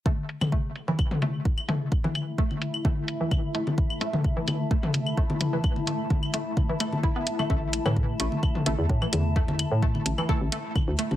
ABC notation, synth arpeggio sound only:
X:1
M:4/4
L:1/16
Q:"Swing 16ths" 1/4=129
K:Clyd
V:1 name="Synth arpeggio sound"
A, z3 A, z2 E, z2 A, z3 A, z | z E, z2 A, z3 A, z2 E, z2 A, z | z2 A, z2 E, z2 A, z3 A, z2 E, | z2 A, z3 A, z2 E, A, z E B, z A, |
A, z2 E, z2 A, z3 A, z2 E, z2 | A, z3 A, z2 E, z2 A, z3 A, z |]